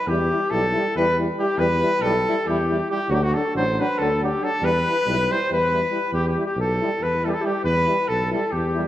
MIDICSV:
0, 0, Header, 1, 6, 480
1, 0, Start_track
1, 0, Key_signature, 1, "minor"
1, 0, Tempo, 432277
1, 71, Time_signature, 7, 3, 24, 8
1, 9856, End_track
2, 0, Start_track
2, 0, Title_t, "Clarinet"
2, 0, Program_c, 0, 71
2, 0, Note_on_c, 0, 71, 68
2, 110, Note_on_c, 0, 67, 77
2, 126, Note_off_c, 0, 71, 0
2, 600, Note_on_c, 0, 69, 76
2, 617, Note_off_c, 0, 67, 0
2, 1080, Note_off_c, 0, 69, 0
2, 1086, Note_on_c, 0, 71, 100
2, 1308, Note_off_c, 0, 71, 0
2, 1583, Note_on_c, 0, 67, 84
2, 1780, Note_on_c, 0, 71, 103
2, 1796, Note_off_c, 0, 67, 0
2, 2295, Note_on_c, 0, 69, 81
2, 2312, Note_off_c, 0, 71, 0
2, 2778, Note_on_c, 0, 67, 78
2, 2794, Note_off_c, 0, 69, 0
2, 3231, Note_off_c, 0, 67, 0
2, 3267, Note_on_c, 0, 67, 72
2, 3468, Note_on_c, 0, 66, 77
2, 3485, Note_off_c, 0, 67, 0
2, 3518, Note_on_c, 0, 67, 69
2, 3534, Note_off_c, 0, 66, 0
2, 3601, Note_on_c, 0, 66, 82
2, 3618, Note_off_c, 0, 67, 0
2, 3740, Note_on_c, 0, 69, 77
2, 3757, Note_off_c, 0, 66, 0
2, 3949, Note_off_c, 0, 69, 0
2, 3974, Note_on_c, 0, 72, 76
2, 4258, Note_on_c, 0, 71, 88
2, 4275, Note_off_c, 0, 72, 0
2, 4468, Note_on_c, 0, 69, 97
2, 4484, Note_off_c, 0, 71, 0
2, 4696, Note_off_c, 0, 69, 0
2, 4711, Note_on_c, 0, 67, 63
2, 4923, Note_on_c, 0, 69, 81
2, 4940, Note_off_c, 0, 67, 0
2, 5150, Note_on_c, 0, 71, 97
2, 5167, Note_off_c, 0, 69, 0
2, 5901, Note_on_c, 0, 72, 87
2, 5918, Note_off_c, 0, 71, 0
2, 6117, Note_off_c, 0, 72, 0
2, 6144, Note_on_c, 0, 71, 91
2, 6770, Note_off_c, 0, 71, 0
2, 6839, Note_on_c, 0, 67, 76
2, 6982, Note_off_c, 0, 67, 0
2, 6989, Note_on_c, 0, 67, 70
2, 7135, Note_off_c, 0, 67, 0
2, 7179, Note_on_c, 0, 67, 74
2, 7301, Note_off_c, 0, 67, 0
2, 7331, Note_on_c, 0, 69, 66
2, 7800, Note_on_c, 0, 71, 78
2, 7816, Note_off_c, 0, 69, 0
2, 8052, Note_on_c, 0, 69, 61
2, 8068, Note_off_c, 0, 71, 0
2, 8075, Note_off_c, 0, 69, 0
2, 8137, Note_on_c, 0, 69, 74
2, 8229, Note_on_c, 0, 67, 69
2, 8245, Note_off_c, 0, 69, 0
2, 8461, Note_off_c, 0, 67, 0
2, 8471, Note_on_c, 0, 71, 78
2, 8987, Note_on_c, 0, 69, 76
2, 9004, Note_off_c, 0, 71, 0
2, 9235, Note_off_c, 0, 69, 0
2, 9242, Note_on_c, 0, 69, 74
2, 9475, Note_on_c, 0, 67, 87
2, 9492, Note_off_c, 0, 69, 0
2, 9856, Note_off_c, 0, 67, 0
2, 9856, End_track
3, 0, Start_track
3, 0, Title_t, "Trumpet"
3, 0, Program_c, 1, 56
3, 88, Note_on_c, 1, 67, 91
3, 558, Note_on_c, 1, 69, 106
3, 575, Note_off_c, 1, 67, 0
3, 1059, Note_off_c, 1, 69, 0
3, 1065, Note_on_c, 1, 71, 86
3, 1297, Note_off_c, 1, 71, 0
3, 1549, Note_on_c, 1, 67, 91
3, 1762, Note_on_c, 1, 71, 114
3, 1778, Note_off_c, 1, 67, 0
3, 2241, Note_on_c, 1, 69, 95
3, 2258, Note_off_c, 1, 71, 0
3, 2745, Note_on_c, 1, 67, 80
3, 2762, Note_off_c, 1, 69, 0
3, 3215, Note_off_c, 1, 67, 0
3, 3224, Note_on_c, 1, 67, 98
3, 3444, Note_on_c, 1, 66, 100
3, 3461, Note_off_c, 1, 67, 0
3, 3485, Note_on_c, 1, 67, 83
3, 3501, Note_off_c, 1, 66, 0
3, 3588, Note_on_c, 1, 66, 91
3, 3605, Note_off_c, 1, 67, 0
3, 3708, Note_on_c, 1, 69, 74
3, 3725, Note_off_c, 1, 66, 0
3, 3933, Note_off_c, 1, 69, 0
3, 3957, Note_on_c, 1, 72, 95
3, 4220, Note_on_c, 1, 71, 87
3, 4236, Note_off_c, 1, 72, 0
3, 4421, Note_on_c, 1, 69, 81
3, 4438, Note_off_c, 1, 71, 0
3, 4673, Note_off_c, 1, 69, 0
3, 4704, Note_on_c, 1, 67, 83
3, 4929, Note_on_c, 1, 69, 99
3, 4946, Note_off_c, 1, 67, 0
3, 5161, Note_on_c, 1, 71, 120
3, 5178, Note_off_c, 1, 69, 0
3, 5906, Note_on_c, 1, 72, 97
3, 5922, Note_off_c, 1, 71, 0
3, 6119, Note_off_c, 1, 72, 0
3, 6138, Note_on_c, 1, 71, 90
3, 6767, Note_off_c, 1, 71, 0
3, 6809, Note_on_c, 1, 67, 92
3, 6966, Note_off_c, 1, 67, 0
3, 6973, Note_on_c, 1, 67, 72
3, 7139, Note_off_c, 1, 67, 0
3, 7165, Note_on_c, 1, 67, 77
3, 7293, Note_off_c, 1, 67, 0
3, 7335, Note_on_c, 1, 69, 90
3, 7806, Note_on_c, 1, 71, 89
3, 7822, Note_off_c, 1, 69, 0
3, 8047, Note_on_c, 1, 69, 77
3, 8063, Note_off_c, 1, 71, 0
3, 8101, Note_on_c, 1, 67, 74
3, 8117, Note_off_c, 1, 69, 0
3, 8148, Note_on_c, 1, 69, 80
3, 8164, Note_off_c, 1, 67, 0
3, 8270, Note_on_c, 1, 67, 80
3, 8286, Note_off_c, 1, 69, 0
3, 8482, Note_off_c, 1, 67, 0
3, 8488, Note_on_c, 1, 71, 101
3, 8974, Note_on_c, 1, 69, 96
3, 8990, Note_off_c, 1, 71, 0
3, 9239, Note_off_c, 1, 69, 0
3, 9249, Note_on_c, 1, 69, 76
3, 9453, Note_on_c, 1, 67, 81
3, 9470, Note_off_c, 1, 69, 0
3, 9799, Note_off_c, 1, 67, 0
3, 9856, End_track
4, 0, Start_track
4, 0, Title_t, "French horn"
4, 0, Program_c, 2, 60
4, 90, Note_on_c, 2, 64, 56
4, 194, Note_off_c, 2, 64, 0
4, 338, Note_on_c, 2, 64, 52
4, 429, Note_off_c, 2, 64, 0
4, 567, Note_on_c, 2, 64, 65
4, 675, Note_off_c, 2, 64, 0
4, 811, Note_on_c, 2, 64, 65
4, 907, Note_off_c, 2, 64, 0
4, 1074, Note_on_c, 2, 64, 68
4, 1172, Note_off_c, 2, 64, 0
4, 1317, Note_on_c, 2, 64, 55
4, 1404, Note_off_c, 2, 64, 0
4, 1542, Note_on_c, 2, 64, 63
4, 1628, Note_off_c, 2, 64, 0
4, 1739, Note_on_c, 2, 64, 64
4, 1849, Note_off_c, 2, 64, 0
4, 2030, Note_on_c, 2, 64, 72
4, 2119, Note_off_c, 2, 64, 0
4, 2278, Note_on_c, 2, 64, 68
4, 2380, Note_off_c, 2, 64, 0
4, 2541, Note_on_c, 2, 64, 77
4, 2627, Note_off_c, 2, 64, 0
4, 2768, Note_on_c, 2, 64, 81
4, 2864, Note_off_c, 2, 64, 0
4, 2995, Note_on_c, 2, 64, 70
4, 3083, Note_off_c, 2, 64, 0
4, 3240, Note_on_c, 2, 64, 64
4, 3323, Note_off_c, 2, 64, 0
4, 3461, Note_on_c, 2, 62, 65
4, 3564, Note_off_c, 2, 62, 0
4, 3712, Note_on_c, 2, 62, 66
4, 3801, Note_off_c, 2, 62, 0
4, 3944, Note_on_c, 2, 62, 72
4, 4049, Note_off_c, 2, 62, 0
4, 4200, Note_on_c, 2, 62, 76
4, 4291, Note_off_c, 2, 62, 0
4, 4447, Note_on_c, 2, 62, 75
4, 4542, Note_off_c, 2, 62, 0
4, 4678, Note_on_c, 2, 62, 68
4, 4765, Note_off_c, 2, 62, 0
4, 4904, Note_on_c, 2, 62, 68
4, 4990, Note_off_c, 2, 62, 0
4, 5150, Note_on_c, 2, 64, 68
4, 5251, Note_off_c, 2, 64, 0
4, 5420, Note_on_c, 2, 64, 53
4, 5503, Note_off_c, 2, 64, 0
4, 5647, Note_on_c, 2, 64, 71
4, 5748, Note_off_c, 2, 64, 0
4, 5888, Note_on_c, 2, 64, 55
4, 5977, Note_off_c, 2, 64, 0
4, 6110, Note_on_c, 2, 64, 60
4, 6209, Note_off_c, 2, 64, 0
4, 6362, Note_on_c, 2, 64, 56
4, 6448, Note_off_c, 2, 64, 0
4, 6577, Note_on_c, 2, 64, 51
4, 6665, Note_off_c, 2, 64, 0
4, 7075, Note_on_c, 2, 64, 59
4, 7164, Note_off_c, 2, 64, 0
4, 7556, Note_on_c, 2, 64, 71
4, 7647, Note_off_c, 2, 64, 0
4, 8039, Note_on_c, 2, 64, 65
4, 8126, Note_off_c, 2, 64, 0
4, 8230, Note_on_c, 2, 64, 67
4, 8323, Note_off_c, 2, 64, 0
4, 8732, Note_on_c, 2, 64, 62
4, 8824, Note_off_c, 2, 64, 0
4, 9230, Note_on_c, 2, 64, 73
4, 9322, Note_off_c, 2, 64, 0
4, 9716, Note_on_c, 2, 64, 66
4, 9803, Note_off_c, 2, 64, 0
4, 9856, End_track
5, 0, Start_track
5, 0, Title_t, "Trombone"
5, 0, Program_c, 3, 57
5, 106, Note_on_c, 3, 55, 60
5, 207, Note_off_c, 3, 55, 0
5, 377, Note_on_c, 3, 55, 42
5, 460, Note_off_c, 3, 55, 0
5, 603, Note_on_c, 3, 55, 59
5, 703, Note_off_c, 3, 55, 0
5, 853, Note_on_c, 3, 55, 64
5, 941, Note_off_c, 3, 55, 0
5, 1074, Note_on_c, 3, 55, 64
5, 1172, Note_off_c, 3, 55, 0
5, 1321, Note_on_c, 3, 55, 50
5, 1408, Note_off_c, 3, 55, 0
5, 1530, Note_on_c, 3, 55, 67
5, 1619, Note_off_c, 3, 55, 0
5, 1756, Note_on_c, 3, 55, 63
5, 1863, Note_off_c, 3, 55, 0
5, 2017, Note_on_c, 3, 55, 58
5, 2109, Note_off_c, 3, 55, 0
5, 2253, Note_on_c, 3, 55, 67
5, 2360, Note_off_c, 3, 55, 0
5, 2525, Note_on_c, 3, 55, 66
5, 2615, Note_off_c, 3, 55, 0
5, 2743, Note_on_c, 3, 55, 59
5, 2843, Note_off_c, 3, 55, 0
5, 2995, Note_on_c, 3, 55, 56
5, 3083, Note_off_c, 3, 55, 0
5, 3222, Note_on_c, 3, 55, 55
5, 3309, Note_off_c, 3, 55, 0
5, 3438, Note_on_c, 3, 54, 72
5, 3545, Note_off_c, 3, 54, 0
5, 3703, Note_on_c, 3, 54, 51
5, 3794, Note_off_c, 3, 54, 0
5, 3945, Note_on_c, 3, 54, 70
5, 4050, Note_off_c, 3, 54, 0
5, 4214, Note_on_c, 3, 54, 69
5, 4302, Note_off_c, 3, 54, 0
5, 4429, Note_on_c, 3, 54, 59
5, 4528, Note_off_c, 3, 54, 0
5, 4675, Note_on_c, 3, 54, 64
5, 4763, Note_off_c, 3, 54, 0
5, 4902, Note_on_c, 3, 54, 56
5, 4989, Note_off_c, 3, 54, 0
5, 5112, Note_on_c, 3, 55, 73
5, 5220, Note_off_c, 3, 55, 0
5, 5390, Note_on_c, 3, 55, 49
5, 5479, Note_off_c, 3, 55, 0
5, 5606, Note_on_c, 3, 55, 58
5, 5714, Note_off_c, 3, 55, 0
5, 5879, Note_on_c, 3, 55, 57
5, 5969, Note_off_c, 3, 55, 0
5, 6105, Note_on_c, 3, 55, 55
5, 6205, Note_off_c, 3, 55, 0
5, 6354, Note_on_c, 3, 55, 46
5, 6443, Note_off_c, 3, 55, 0
5, 6561, Note_on_c, 3, 55, 52
5, 6652, Note_off_c, 3, 55, 0
5, 7069, Note_on_c, 3, 55, 47
5, 7159, Note_off_c, 3, 55, 0
5, 7583, Note_on_c, 3, 55, 61
5, 7669, Note_off_c, 3, 55, 0
5, 8058, Note_on_c, 3, 55, 63
5, 8141, Note_off_c, 3, 55, 0
5, 8277, Note_on_c, 3, 55, 66
5, 8361, Note_off_c, 3, 55, 0
5, 8746, Note_on_c, 3, 55, 58
5, 8835, Note_off_c, 3, 55, 0
5, 9255, Note_on_c, 3, 55, 64
5, 9342, Note_off_c, 3, 55, 0
5, 9734, Note_on_c, 3, 55, 69
5, 9817, Note_off_c, 3, 55, 0
5, 9856, End_track
6, 0, Start_track
6, 0, Title_t, "Tuba"
6, 0, Program_c, 4, 58
6, 75, Note_on_c, 4, 40, 93
6, 347, Note_off_c, 4, 40, 0
6, 569, Note_on_c, 4, 35, 81
6, 841, Note_off_c, 4, 35, 0
6, 1064, Note_on_c, 4, 40, 77
6, 1444, Note_off_c, 4, 40, 0
6, 1753, Note_on_c, 4, 40, 95
6, 2026, Note_off_c, 4, 40, 0
6, 2224, Note_on_c, 4, 35, 83
6, 2503, Note_off_c, 4, 35, 0
6, 2739, Note_on_c, 4, 40, 76
6, 3120, Note_off_c, 4, 40, 0
6, 3430, Note_on_c, 4, 38, 105
6, 3704, Note_off_c, 4, 38, 0
6, 3940, Note_on_c, 4, 33, 87
6, 4210, Note_off_c, 4, 33, 0
6, 4435, Note_on_c, 4, 38, 70
6, 4812, Note_off_c, 4, 38, 0
6, 5125, Note_on_c, 4, 40, 93
6, 5395, Note_off_c, 4, 40, 0
6, 5626, Note_on_c, 4, 35, 87
6, 5894, Note_off_c, 4, 35, 0
6, 6116, Note_on_c, 4, 40, 70
6, 6493, Note_off_c, 4, 40, 0
6, 6799, Note_on_c, 4, 40, 90
6, 7070, Note_off_c, 4, 40, 0
6, 7282, Note_on_c, 4, 35, 85
6, 7556, Note_off_c, 4, 35, 0
6, 7779, Note_on_c, 4, 40, 65
6, 8159, Note_off_c, 4, 40, 0
6, 8480, Note_on_c, 4, 40, 98
6, 8750, Note_off_c, 4, 40, 0
6, 8982, Note_on_c, 4, 35, 83
6, 9250, Note_off_c, 4, 35, 0
6, 9459, Note_on_c, 4, 40, 81
6, 9839, Note_off_c, 4, 40, 0
6, 9856, End_track
0, 0, End_of_file